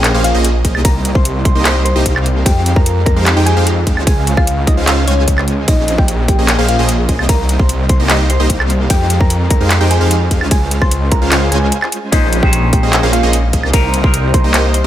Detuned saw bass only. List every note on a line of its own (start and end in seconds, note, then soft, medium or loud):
0.00 0.12 A#1 loud
0.14 0.33 A#1 loud
0.35 0.63 A#1 loud
0.65 0.73 A#1 loud
0.75 1.53 C2 loud
1.55 1.63 C2 loud
1.66 1.94 C2 loud
1.96 2.04 C2 loud
2.06 2.44 C2 loud
2.46 3.15 F2 loud
3.17 3.35 F2 loud
3.37 3.55 F2 loud
3.57 3.85 F2 loud
3.87 3.99 F2 loud
3.97 4.76 C#2 loud
4.78 4.86 C#2 loud
4.87 5.06 C#2 loud
5.08 5.66 C#2 loud
5.68 6.37 A#1 loud
6.39 6.57 A#1 loud
6.59 6.77 A#1 loud
6.79 7.07 A#1 loud
7.09 7.17 A#1 loud
7.19 7.98 C2 loud
8.00 8.08 C2 loud
8.10 8.38 C2 loud
8.40 8.48 C2 loud
8.50 8.88 C2 loud
8.90 9.59 F2 loud
9.61 9.79 F2 loud
9.81 9.99 F2 loud
10.01 10.29 F2 loud
10.31 10.43 F2 loud
10.41 11.20 C#2 loud
11.22 11.30 C#2 loud
11.32 11.50 C#2 loud
11.52 11.72 C#2 loud
12.12 12.81 A#1 loud
12.83 13.01 A#1 loud
13.03 13.21 A#1 loud
13.23 13.51 A#1 loud
13.53 13.62 A#1 loud
13.64 14.42 C2 loud
14.44 14.52 C2 loud
14.54 14.82 C2 loud